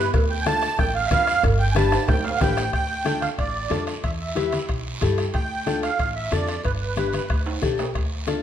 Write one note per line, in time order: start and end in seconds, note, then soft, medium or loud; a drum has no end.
0.00 0.11 B4 medium
0.14 0.66 D2 loud
0.14 bombo low medium
0.14 bombo rim medium
0.14 cowbell loud
0.14 high conga soft
0.14 long guiro medium
0.30 0.46 G5 medium
0.42 0.44 G#5 medium
0.46 0.69 D4 medium
0.46 0.69 F4 medium
0.46 0.69 A4 medium
0.46 0.78 A5 loud
0.46 bombo rim medium
0.46 cowbell medium
0.46 high conga medium
0.46 short guiro medium
0.62 bombo rim medium
0.62 short guiro medium
0.78 1.05 A1 medium
0.78 0.94 G5 medium
0.78 bombo low medium
0.78 bombo rim medium
0.78 cowbell medium
0.78 high conga soft
0.78 low conga medium
0.78 long guiro medium
0.95 1.10 F5 medium
1.06 1.09 E5 medium
1.11 1.37 F2 medium
1.11 1.34 D4 medium
1.11 1.34 F4 medium
1.11 1.34 B4 medium
1.11 1.43 F5 loud
1.11 bombo low medium
1.11 bombo rim medium
1.11 cowbell medium
1.11 high conga medium
1.11 low conga medium
1.11 short guiro medium
1.27 bombo rim medium
1.27 short guiro medium
1.43 1.96 G1 loud
1.43 bombo low medium
1.43 bombo rim medium
1.43 cowbell loud
1.43 high conga soft
1.43 low conga medium
1.43 long guiro medium
1.59 1.75 G5 medium
1.71 1.98 D4 medium
1.71 1.74 G#5 medium
1.75 1.98 G4 medium
1.75 1.98 B4 medium
1.75 2.07 A5 loud
1.75 bombo rim medium
1.75 cowbell medium
1.75 high conga medium
1.75 short guiro medium
1.92 bombo rim medium
1.92 high timbale medium
1.92 short guiro medium
2.08 2.34 D2 medium
2.08 2.24 G5 medium
2.08 bombo low medium
2.08 bombo rim medium
2.08 cowbell medium
2.08 high conga soft
2.08 low conga medium
2.08 high timbale medium
2.08 long guiro medium
2.24 2.40 F5 medium
2.24 low timbale medium
2.36 2.39 F#5 medium
2.41 2.67 A1 loud
2.41 2.64 D4 medium
2.41 2.64 G4 medium
2.41 2.64 B4 medium
2.41 2.71 G5 loud
2.41 bombo low medium
2.41 bombo rim medium
2.41 cowbell medium
2.41 high conga medium
2.41 low timbale medium
2.41 short guiro medium
2.57 bombo rim medium
2.57 low timbale medium
2.57 short guiro medium
2.73 3.26 D2 medium
2.73 3.23 G5 loud
2.73 bombo low medium
2.73 bombo rim medium
2.73 high timbale medium
2.73 long guiro medium
3.04 3.28 D4 medium
3.04 3.28 F4 medium
3.04 3.29 A4 medium
3.04 bombo rim medium
3.04 high conga medium
3.04 high timbale medium
3.04 short guiro medium
3.22 3.29 F5 medium
3.22 bombo rim medium
3.22 high conga medium
3.22 high timbale medium
3.22 short guiro medium
3.38 3.65 A1 medium
3.38 3.84 D5 medium
3.38 bombo low medium
3.38 bombo rim medium
3.38 high timbale medium
3.38 long guiro medium
3.70 3.97 F2 medium
3.70 3.93 D4 medium
3.70 3.94 F4 medium
3.70 3.94 A4 medium
3.70 bombo rim medium
3.70 high conga medium
3.70 high timbale medium
3.70 low timbale medium
3.70 short guiro medium
3.87 bombo rim medium
3.87 high timbale medium
3.87 short guiro medium
4.04 4.56 E2 medium
4.04 4.11 E5 medium
4.04 bombo low medium
4.04 bombo rim medium
4.04 high timbale medium
4.04 long guiro medium
4.21 4.66 E5 medium
4.35 4.59 E4 medium
4.35 4.59 G4 medium
4.35 4.59 B4 medium
4.35 bombo rim medium
4.35 high conga medium
4.35 high timbale medium
4.35 short guiro medium
4.52 bombo rim medium
4.52 high conga medium
4.52 high timbale medium
4.52 short guiro medium
4.69 4.95 B1 medium
4.69 bombo low medium
4.69 bombo rim medium
4.69 high timbale medium
4.69 long guiro medium
5.01 5.28 G2 medium
5.01 5.24 E4 medium
5.01 5.24 G4 medium
5.01 5.25 A4 medium
5.01 bombo low medium
5.01 bombo rim medium
5.01 high conga medium
5.01 high timbale medium
5.01 short guiro medium
5.18 bombo rim medium
5.18 high timbale medium
5.18 short guiro medium
5.34 5.86 D2 medium
5.34 5.80 G5 loud
5.34 bombo low medium
5.34 bombo rim medium
5.34 high timbale medium
5.34 long guiro medium
5.66 5.89 D4 medium
5.66 5.89 F4 medium
5.66 5.90 A4 medium
5.66 bombo rim medium
5.66 high conga medium
5.66 high timbale medium
5.66 short guiro medium
5.83 6.13 F5 medium
5.83 bombo rim medium
5.83 high timbale medium
5.83 short guiro medium
5.99 6.25 A1 medium
5.99 bombo low medium
5.99 bombo rim medium
5.99 high timbale medium
5.99 long guiro medium
6.16 6.32 E5 medium
6.31 6.58 F2 medium
6.31 6.54 D4 medium
6.31 6.55 F4 medium
6.31 6.55 A4 medium
6.31 6.62 D5 medium
6.31 bombo rim medium
6.31 high conga medium
6.31 high timbale medium
6.31 short guiro medium
6.48 bombo rim medium
6.48 high timbale medium
6.48 short guiro medium
6.64 7.17 G1 medium
6.64 6.72 B4 medium
6.64 bombo low medium
6.64 bombo rim medium
6.64 high timbale medium
6.64 long guiro medium
6.81 7.42 B4 medium
6.96 7.19 D4 medium
6.96 7.20 G4 medium
6.96 7.20 B4 medium
6.96 bombo rim medium
6.96 high conga medium
6.96 high timbale medium
6.96 short guiro medium
7.13 bombo rim medium
7.13 high conga medium
7.13 high timbale medium
7.13 short guiro medium
7.29 7.56 D2 medium
7.29 bombo low medium
7.29 bombo rim medium
7.29 high timbale medium
7.29 long guiro medium
7.46 high timbale medium
7.61 7.89 B1 medium
7.61 7.85 D4 medium
7.61 7.85 G4 medium
7.61 7.85 A4 medium
7.61 bombo low medium
7.61 bombo rim medium
7.61 high conga medium
7.61 short guiro medium
7.78 bombo rim medium
7.78 low timbale medium
7.78 short guiro medium
7.94 8.43 D2 medium
7.94 bombo low medium
7.94 bombo rim medium
7.94 high timbale medium
7.94 long guiro medium
8.27 8.43 D4 medium
8.27 8.43 F4 medium
8.27 8.43 A4 medium
8.27 bombo rim medium
8.27 high conga medium
8.27 high timbale medium
8.27 short guiro medium